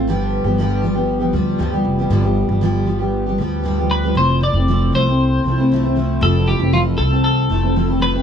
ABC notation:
X:1
M:4/4
L:1/16
Q:1/4=117
K:Flyd
V:1 name="Clean electric guitar"
z16 | z12 z2 B2 | c2 d4 c8- c2 | A2 G2 F2 A2 A6 B2 |]
V:2 name="Steel-string acoustic guitar"
[G,,D,F,G,B,G]3 [F,G,B,G] [G,,D,F,G,B,G]2 [F,G,B,G] [F,G,B,G]2 [F,G,B,G] [F,G,B,G]2 [G,,D,F,G,B,G] [F,G,B,G]2 [F,G,B,G] | [G,,D,F,G,B,G] [F,G,B,G]2 [F,G,B,G] [G,,D,F,G,B,G]2 [F,G,B,G] [F,G,B,G]2 [F,G,B,G] [F,G,B,G]2 [G,,D,F,G,B,G] [F,G,B,G]2 [F,G,B,G] | [F,A,CE]2 [F,A,CE] [A,CE] [F,A,CE]2 [F,A,CE] [A,CE]3 [F,A,CE] [A,CE] [F,A,CE] [A,CE] [F,A,CE]2 | [F,A,CE]2 [F,A,CE] [A,CE] [F,A,CE]2 [F,A,CE] [A,CE]3 [F,A,CE] [A,CE] [F,A,CE] [A,CE] [F,A,CE] [A,CE] |]
V:3 name="Upright bass" clef=bass
G,,,3 G,,,6- G,,, D,,2 D,,2 F,,,2 | G,,,3 G,,,6- G,,, D,,6 | F,,,3 F,,,3 C,,4 C,,6 | F,,,3 F,,,3 C,,4 F,,,6 |]